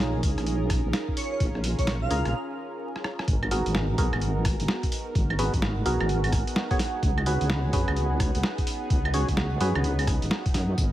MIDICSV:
0, 0, Header, 1, 7, 480
1, 0, Start_track
1, 0, Tempo, 468750
1, 1437, Time_signature, 4, 2, 24, 8
1, 11185, End_track
2, 0, Start_track
2, 0, Title_t, "Ambient pad"
2, 0, Program_c, 0, 92
2, 0, Note_on_c, 0, 63, 78
2, 0, Note_on_c, 0, 68, 81
2, 0, Note_on_c, 0, 73, 88
2, 308, Note_on_c, 0, 77, 77
2, 2397, Note_off_c, 0, 63, 0
2, 2397, Note_off_c, 0, 68, 0
2, 2397, Note_off_c, 0, 73, 0
2, 2398, Note_off_c, 0, 77, 0
2, 4358, Note_on_c, 0, 78, 91
2, 11185, Note_off_c, 0, 78, 0
2, 11185, End_track
3, 0, Start_track
3, 0, Title_t, "Digital synth lead"
3, 0, Program_c, 1, 84
3, 1197, Note_on_c, 1, 73, 89
3, 1294, Note_off_c, 1, 73, 0
3, 1349, Note_on_c, 1, 73, 77
3, 1406, Note_off_c, 1, 73, 0
3, 1828, Note_on_c, 1, 73, 96
3, 1931, Note_off_c, 1, 73, 0
3, 2068, Note_on_c, 1, 77, 95
3, 2397, Note_off_c, 1, 77, 0
3, 11185, End_track
4, 0, Start_track
4, 0, Title_t, "Analog synth pad"
4, 0, Program_c, 2, 89
4, 0, Note_on_c, 2, 61, 85
4, 0, Note_on_c, 2, 65, 80
4, 0, Note_on_c, 2, 68, 91
4, 0, Note_on_c, 2, 70, 96
4, 3316, Note_off_c, 2, 61, 0
4, 3316, Note_off_c, 2, 65, 0
4, 3316, Note_off_c, 2, 68, 0
4, 3316, Note_off_c, 2, 70, 0
4, 3356, Note_on_c, 2, 70, 94
4, 3357, Note_on_c, 2, 59, 88
4, 3357, Note_on_c, 2, 63, 74
4, 3357, Note_on_c, 2, 66, 77
4, 6921, Note_off_c, 2, 70, 0
4, 6957, Note_on_c, 2, 68, 93
4, 10996, Note_off_c, 2, 68, 0
4, 11035, Note_on_c, 2, 70, 92
4, 11185, Note_off_c, 2, 59, 0
4, 11185, Note_off_c, 2, 63, 0
4, 11185, Note_off_c, 2, 66, 0
4, 11185, Note_off_c, 2, 70, 0
4, 11185, End_track
5, 0, Start_track
5, 0, Title_t, "Synth stab"
5, 0, Program_c, 3, 62
5, 0, Note_on_c, 3, 61, 75
5, 0, Note_on_c, 3, 65, 67
5, 0, Note_on_c, 3, 68, 68
5, 0, Note_on_c, 3, 70, 84
5, 216, Note_off_c, 3, 61, 0
5, 216, Note_off_c, 3, 65, 0
5, 216, Note_off_c, 3, 68, 0
5, 216, Note_off_c, 3, 70, 0
5, 2157, Note_on_c, 3, 61, 96
5, 2157, Note_on_c, 3, 65, 89
5, 2157, Note_on_c, 3, 68, 89
5, 2157, Note_on_c, 3, 70, 105
5, 2397, Note_off_c, 3, 61, 0
5, 2397, Note_off_c, 3, 65, 0
5, 2397, Note_off_c, 3, 68, 0
5, 2397, Note_off_c, 3, 70, 0
5, 3597, Note_on_c, 3, 66, 69
5, 3597, Note_on_c, 3, 68, 69
5, 3597, Note_on_c, 3, 70, 81
5, 3598, Note_on_c, 3, 59, 78
5, 4056, Note_off_c, 3, 59, 0
5, 4056, Note_off_c, 3, 66, 0
5, 4056, Note_off_c, 3, 68, 0
5, 4056, Note_off_c, 3, 70, 0
5, 4077, Note_on_c, 3, 59, 94
5, 4077, Note_on_c, 3, 66, 82
5, 4077, Note_on_c, 3, 68, 89
5, 4077, Note_on_c, 3, 70, 106
5, 5496, Note_off_c, 3, 59, 0
5, 5496, Note_off_c, 3, 66, 0
5, 5496, Note_off_c, 3, 68, 0
5, 5496, Note_off_c, 3, 70, 0
5, 5517, Note_on_c, 3, 59, 88
5, 5517, Note_on_c, 3, 66, 81
5, 5517, Note_on_c, 3, 68, 81
5, 5517, Note_on_c, 3, 71, 96
5, 5663, Note_off_c, 3, 59, 0
5, 5663, Note_off_c, 3, 68, 0
5, 5664, Note_off_c, 3, 66, 0
5, 5664, Note_off_c, 3, 71, 0
5, 5997, Note_on_c, 3, 59, 98
5, 5997, Note_on_c, 3, 66, 92
5, 5997, Note_on_c, 3, 68, 86
5, 5997, Note_on_c, 3, 70, 102
5, 6838, Note_off_c, 3, 59, 0
5, 6838, Note_off_c, 3, 66, 0
5, 6838, Note_off_c, 3, 68, 0
5, 6838, Note_off_c, 3, 70, 0
5, 6869, Note_on_c, 3, 59, 102
5, 6869, Note_on_c, 3, 66, 98
5, 6869, Note_on_c, 3, 68, 93
5, 6869, Note_on_c, 3, 73, 116
5, 6946, Note_off_c, 3, 66, 0
5, 6947, Note_off_c, 3, 59, 0
5, 6947, Note_off_c, 3, 68, 0
5, 6947, Note_off_c, 3, 73, 0
5, 7437, Note_on_c, 3, 61, 77
5, 7437, Note_on_c, 3, 66, 69
5, 7437, Note_on_c, 3, 68, 68
5, 7437, Note_on_c, 3, 71, 87
5, 7896, Note_off_c, 3, 61, 0
5, 7896, Note_off_c, 3, 66, 0
5, 7896, Note_off_c, 3, 68, 0
5, 7896, Note_off_c, 3, 71, 0
5, 7917, Note_on_c, 3, 61, 97
5, 7917, Note_on_c, 3, 66, 84
5, 7917, Note_on_c, 3, 68, 86
5, 7917, Note_on_c, 3, 71, 105
5, 9336, Note_off_c, 3, 61, 0
5, 9336, Note_off_c, 3, 66, 0
5, 9336, Note_off_c, 3, 68, 0
5, 9336, Note_off_c, 3, 71, 0
5, 9357, Note_on_c, 3, 66, 82
5, 9358, Note_on_c, 3, 61, 86
5, 9358, Note_on_c, 3, 68, 82
5, 9358, Note_on_c, 3, 73, 97
5, 9504, Note_off_c, 3, 61, 0
5, 9504, Note_off_c, 3, 66, 0
5, 9504, Note_off_c, 3, 68, 0
5, 9504, Note_off_c, 3, 73, 0
5, 9838, Note_on_c, 3, 61, 99
5, 9838, Note_on_c, 3, 66, 85
5, 9838, Note_on_c, 3, 68, 89
5, 9838, Note_on_c, 3, 71, 105
5, 10679, Note_off_c, 3, 61, 0
5, 10679, Note_off_c, 3, 66, 0
5, 10679, Note_off_c, 3, 68, 0
5, 10679, Note_off_c, 3, 71, 0
5, 11185, End_track
6, 0, Start_track
6, 0, Title_t, "Wobble bass"
6, 0, Program_c, 4, 39
6, 0, Note_on_c, 4, 34, 81
6, 214, Note_off_c, 4, 34, 0
6, 236, Note_on_c, 4, 37, 97
6, 364, Note_off_c, 4, 37, 0
6, 389, Note_on_c, 4, 34, 89
6, 830, Note_off_c, 4, 34, 0
6, 868, Note_on_c, 4, 34, 98
6, 942, Note_off_c, 4, 34, 0
6, 1436, Note_on_c, 4, 34, 100
6, 1789, Note_off_c, 4, 34, 0
6, 1828, Note_on_c, 4, 34, 85
6, 2134, Note_off_c, 4, 34, 0
6, 2157, Note_on_c, 4, 37, 97
6, 2284, Note_off_c, 4, 37, 0
6, 2307, Note_on_c, 4, 34, 87
6, 2396, Note_off_c, 4, 34, 0
6, 3356, Note_on_c, 4, 32, 101
6, 3709, Note_off_c, 4, 32, 0
6, 3748, Note_on_c, 4, 32, 84
6, 4054, Note_off_c, 4, 32, 0
6, 4076, Note_on_c, 4, 35, 101
6, 4203, Note_off_c, 4, 35, 0
6, 4228, Note_on_c, 4, 32, 85
6, 4669, Note_off_c, 4, 32, 0
6, 4708, Note_on_c, 4, 32, 97
6, 4782, Note_off_c, 4, 32, 0
6, 5275, Note_on_c, 4, 32, 97
6, 5628, Note_off_c, 4, 32, 0
6, 5667, Note_on_c, 4, 32, 85
6, 5973, Note_off_c, 4, 32, 0
6, 5996, Note_on_c, 4, 35, 96
6, 6123, Note_off_c, 4, 35, 0
6, 6147, Note_on_c, 4, 32, 89
6, 6589, Note_off_c, 4, 32, 0
6, 7196, Note_on_c, 4, 37, 103
6, 7549, Note_off_c, 4, 37, 0
6, 7588, Note_on_c, 4, 37, 83
6, 7894, Note_off_c, 4, 37, 0
6, 7915, Note_on_c, 4, 42, 98
6, 8043, Note_off_c, 4, 42, 0
6, 8069, Note_on_c, 4, 37, 89
6, 8509, Note_off_c, 4, 37, 0
6, 8548, Note_on_c, 4, 37, 101
6, 8622, Note_off_c, 4, 37, 0
6, 9116, Note_on_c, 4, 37, 99
6, 9469, Note_off_c, 4, 37, 0
6, 9508, Note_on_c, 4, 37, 81
6, 9814, Note_off_c, 4, 37, 0
6, 9837, Note_on_c, 4, 42, 97
6, 9964, Note_off_c, 4, 42, 0
6, 9989, Note_on_c, 4, 37, 89
6, 10071, Note_off_c, 4, 37, 0
6, 10077, Note_on_c, 4, 37, 91
6, 10429, Note_off_c, 4, 37, 0
6, 10469, Note_on_c, 4, 32, 103
6, 10543, Note_off_c, 4, 32, 0
6, 10797, Note_on_c, 4, 42, 82
6, 11008, Note_off_c, 4, 42, 0
6, 11036, Note_on_c, 4, 32, 101
6, 11185, Note_off_c, 4, 32, 0
6, 11185, End_track
7, 0, Start_track
7, 0, Title_t, "Drums"
7, 0, Note_on_c, 9, 38, 114
7, 0, Note_on_c, 9, 42, 69
7, 98, Note_off_c, 9, 38, 0
7, 98, Note_off_c, 9, 42, 0
7, 236, Note_on_c, 9, 36, 101
7, 236, Note_on_c, 9, 46, 107
7, 339, Note_off_c, 9, 36, 0
7, 339, Note_off_c, 9, 46, 0
7, 388, Note_on_c, 9, 37, 53
7, 388, Note_on_c, 9, 42, 38
7, 476, Note_off_c, 9, 42, 0
7, 476, Note_on_c, 9, 42, 69
7, 490, Note_off_c, 9, 37, 0
7, 578, Note_off_c, 9, 42, 0
7, 716, Note_on_c, 9, 36, 99
7, 716, Note_on_c, 9, 37, 66
7, 716, Note_on_c, 9, 46, 107
7, 819, Note_off_c, 9, 36, 0
7, 819, Note_off_c, 9, 37, 0
7, 819, Note_off_c, 9, 46, 0
7, 956, Note_on_c, 9, 38, 110
7, 956, Note_on_c, 9, 42, 69
7, 1059, Note_off_c, 9, 38, 0
7, 1059, Note_off_c, 9, 42, 0
7, 1108, Note_on_c, 9, 36, 57
7, 1197, Note_on_c, 9, 46, 106
7, 1211, Note_off_c, 9, 36, 0
7, 1299, Note_off_c, 9, 46, 0
7, 1436, Note_on_c, 9, 36, 121
7, 1437, Note_on_c, 9, 42, 67
7, 1539, Note_off_c, 9, 36, 0
7, 1539, Note_off_c, 9, 42, 0
7, 1589, Note_on_c, 9, 37, 33
7, 1677, Note_on_c, 9, 46, 118
7, 1691, Note_off_c, 9, 37, 0
7, 1779, Note_off_c, 9, 46, 0
7, 1828, Note_on_c, 9, 36, 60
7, 1829, Note_on_c, 9, 42, 69
7, 1917, Note_off_c, 9, 42, 0
7, 1917, Note_on_c, 9, 38, 113
7, 1917, Note_on_c, 9, 42, 65
7, 1931, Note_off_c, 9, 36, 0
7, 2019, Note_off_c, 9, 38, 0
7, 2019, Note_off_c, 9, 42, 0
7, 2157, Note_on_c, 9, 46, 113
7, 2259, Note_off_c, 9, 46, 0
7, 2309, Note_on_c, 9, 37, 57
7, 2309, Note_on_c, 9, 42, 36
7, 2411, Note_off_c, 9, 37, 0
7, 2411, Note_off_c, 9, 42, 0
7, 3029, Note_on_c, 9, 37, 54
7, 3117, Note_off_c, 9, 37, 0
7, 3117, Note_on_c, 9, 37, 80
7, 3219, Note_off_c, 9, 37, 0
7, 3269, Note_on_c, 9, 37, 80
7, 3356, Note_on_c, 9, 36, 119
7, 3356, Note_on_c, 9, 42, 65
7, 3371, Note_off_c, 9, 37, 0
7, 3458, Note_off_c, 9, 36, 0
7, 3459, Note_off_c, 9, 42, 0
7, 3508, Note_on_c, 9, 37, 33
7, 3508, Note_on_c, 9, 75, 58
7, 3596, Note_on_c, 9, 46, 111
7, 3611, Note_off_c, 9, 37, 0
7, 3611, Note_off_c, 9, 75, 0
7, 3699, Note_off_c, 9, 46, 0
7, 3749, Note_on_c, 9, 42, 66
7, 3836, Note_on_c, 9, 38, 120
7, 3851, Note_off_c, 9, 42, 0
7, 3939, Note_off_c, 9, 38, 0
7, 4076, Note_on_c, 9, 36, 107
7, 4076, Note_on_c, 9, 46, 109
7, 4178, Note_off_c, 9, 36, 0
7, 4179, Note_off_c, 9, 46, 0
7, 4229, Note_on_c, 9, 37, 57
7, 4229, Note_on_c, 9, 75, 58
7, 4316, Note_on_c, 9, 42, 60
7, 4331, Note_off_c, 9, 37, 0
7, 4331, Note_off_c, 9, 75, 0
7, 4419, Note_off_c, 9, 42, 0
7, 4556, Note_on_c, 9, 36, 112
7, 4556, Note_on_c, 9, 37, 73
7, 4556, Note_on_c, 9, 46, 113
7, 4658, Note_off_c, 9, 36, 0
7, 4659, Note_off_c, 9, 37, 0
7, 4659, Note_off_c, 9, 46, 0
7, 4708, Note_on_c, 9, 42, 67
7, 4796, Note_on_c, 9, 38, 119
7, 4810, Note_off_c, 9, 42, 0
7, 4899, Note_off_c, 9, 38, 0
7, 4948, Note_on_c, 9, 36, 65
7, 4949, Note_on_c, 9, 42, 56
7, 5037, Note_on_c, 9, 46, 109
7, 5050, Note_off_c, 9, 36, 0
7, 5051, Note_off_c, 9, 42, 0
7, 5140, Note_off_c, 9, 46, 0
7, 5276, Note_on_c, 9, 36, 127
7, 5278, Note_on_c, 9, 42, 64
7, 5378, Note_off_c, 9, 36, 0
7, 5380, Note_off_c, 9, 42, 0
7, 5429, Note_on_c, 9, 37, 32
7, 5429, Note_on_c, 9, 75, 61
7, 5517, Note_on_c, 9, 46, 112
7, 5532, Note_off_c, 9, 37, 0
7, 5532, Note_off_c, 9, 75, 0
7, 5620, Note_off_c, 9, 46, 0
7, 5668, Note_on_c, 9, 36, 64
7, 5669, Note_on_c, 9, 42, 62
7, 5757, Note_on_c, 9, 38, 124
7, 5770, Note_off_c, 9, 36, 0
7, 5772, Note_off_c, 9, 42, 0
7, 5860, Note_off_c, 9, 38, 0
7, 5997, Note_on_c, 9, 46, 107
7, 6100, Note_off_c, 9, 46, 0
7, 6149, Note_on_c, 9, 37, 58
7, 6149, Note_on_c, 9, 75, 59
7, 6238, Note_on_c, 9, 42, 61
7, 6252, Note_off_c, 9, 37, 0
7, 6252, Note_off_c, 9, 75, 0
7, 6340, Note_off_c, 9, 42, 0
7, 6389, Note_on_c, 9, 46, 65
7, 6389, Note_on_c, 9, 75, 61
7, 6476, Note_on_c, 9, 36, 110
7, 6477, Note_off_c, 9, 46, 0
7, 6477, Note_on_c, 9, 37, 70
7, 6477, Note_on_c, 9, 46, 108
7, 6492, Note_off_c, 9, 75, 0
7, 6579, Note_off_c, 9, 36, 0
7, 6580, Note_off_c, 9, 37, 0
7, 6580, Note_off_c, 9, 46, 0
7, 6629, Note_on_c, 9, 42, 65
7, 6717, Note_on_c, 9, 38, 127
7, 6732, Note_off_c, 9, 42, 0
7, 6820, Note_off_c, 9, 38, 0
7, 6868, Note_on_c, 9, 36, 113
7, 6869, Note_on_c, 9, 42, 53
7, 6957, Note_on_c, 9, 38, 67
7, 6957, Note_on_c, 9, 46, 111
7, 6970, Note_off_c, 9, 36, 0
7, 6971, Note_off_c, 9, 42, 0
7, 7059, Note_off_c, 9, 38, 0
7, 7059, Note_off_c, 9, 46, 0
7, 7196, Note_on_c, 9, 36, 127
7, 7197, Note_on_c, 9, 42, 65
7, 7298, Note_off_c, 9, 36, 0
7, 7299, Note_off_c, 9, 42, 0
7, 7349, Note_on_c, 9, 37, 33
7, 7349, Note_on_c, 9, 75, 62
7, 7436, Note_on_c, 9, 46, 108
7, 7451, Note_off_c, 9, 37, 0
7, 7451, Note_off_c, 9, 75, 0
7, 7539, Note_off_c, 9, 46, 0
7, 7588, Note_on_c, 9, 42, 63
7, 7676, Note_on_c, 9, 38, 127
7, 7691, Note_off_c, 9, 42, 0
7, 7779, Note_off_c, 9, 38, 0
7, 7916, Note_on_c, 9, 36, 109
7, 7916, Note_on_c, 9, 46, 105
7, 8018, Note_off_c, 9, 36, 0
7, 8018, Note_off_c, 9, 46, 0
7, 8068, Note_on_c, 9, 37, 58
7, 8068, Note_on_c, 9, 75, 63
7, 8156, Note_on_c, 9, 42, 60
7, 8171, Note_off_c, 9, 37, 0
7, 8171, Note_off_c, 9, 75, 0
7, 8258, Note_off_c, 9, 42, 0
7, 8396, Note_on_c, 9, 36, 115
7, 8397, Note_on_c, 9, 37, 71
7, 8397, Note_on_c, 9, 46, 104
7, 8498, Note_off_c, 9, 36, 0
7, 8499, Note_off_c, 9, 37, 0
7, 8499, Note_off_c, 9, 46, 0
7, 8548, Note_on_c, 9, 42, 65
7, 8637, Note_on_c, 9, 38, 125
7, 8651, Note_off_c, 9, 42, 0
7, 8739, Note_off_c, 9, 38, 0
7, 8788, Note_on_c, 9, 36, 67
7, 8789, Note_on_c, 9, 42, 54
7, 8877, Note_on_c, 9, 46, 108
7, 8890, Note_off_c, 9, 36, 0
7, 8891, Note_off_c, 9, 42, 0
7, 8979, Note_off_c, 9, 46, 0
7, 9116, Note_on_c, 9, 36, 127
7, 9117, Note_on_c, 9, 42, 63
7, 9219, Note_off_c, 9, 36, 0
7, 9219, Note_off_c, 9, 42, 0
7, 9268, Note_on_c, 9, 37, 32
7, 9268, Note_on_c, 9, 75, 68
7, 9356, Note_on_c, 9, 46, 103
7, 9371, Note_off_c, 9, 37, 0
7, 9371, Note_off_c, 9, 75, 0
7, 9459, Note_off_c, 9, 46, 0
7, 9508, Note_on_c, 9, 36, 66
7, 9508, Note_on_c, 9, 42, 63
7, 9596, Note_on_c, 9, 38, 120
7, 9610, Note_off_c, 9, 42, 0
7, 9611, Note_off_c, 9, 36, 0
7, 9698, Note_off_c, 9, 38, 0
7, 9836, Note_on_c, 9, 46, 100
7, 9939, Note_off_c, 9, 46, 0
7, 9988, Note_on_c, 9, 37, 57
7, 9988, Note_on_c, 9, 75, 64
7, 10077, Note_on_c, 9, 42, 61
7, 10091, Note_off_c, 9, 37, 0
7, 10091, Note_off_c, 9, 75, 0
7, 10179, Note_off_c, 9, 42, 0
7, 10228, Note_on_c, 9, 46, 62
7, 10228, Note_on_c, 9, 75, 64
7, 10316, Note_off_c, 9, 46, 0
7, 10316, Note_on_c, 9, 36, 116
7, 10316, Note_on_c, 9, 37, 69
7, 10316, Note_on_c, 9, 46, 105
7, 10331, Note_off_c, 9, 75, 0
7, 10419, Note_off_c, 9, 36, 0
7, 10419, Note_off_c, 9, 37, 0
7, 10419, Note_off_c, 9, 46, 0
7, 10468, Note_on_c, 9, 42, 65
7, 10556, Note_on_c, 9, 38, 127
7, 10570, Note_off_c, 9, 42, 0
7, 10659, Note_off_c, 9, 38, 0
7, 10708, Note_on_c, 9, 36, 112
7, 10708, Note_on_c, 9, 42, 53
7, 10796, Note_on_c, 9, 38, 64
7, 10796, Note_on_c, 9, 46, 104
7, 10811, Note_off_c, 9, 36, 0
7, 10811, Note_off_c, 9, 42, 0
7, 10899, Note_off_c, 9, 38, 0
7, 10899, Note_off_c, 9, 46, 0
7, 11037, Note_on_c, 9, 36, 126
7, 11037, Note_on_c, 9, 42, 66
7, 11037, Note_on_c, 9, 54, 44
7, 11139, Note_off_c, 9, 36, 0
7, 11139, Note_off_c, 9, 42, 0
7, 11139, Note_off_c, 9, 54, 0
7, 11185, End_track
0, 0, End_of_file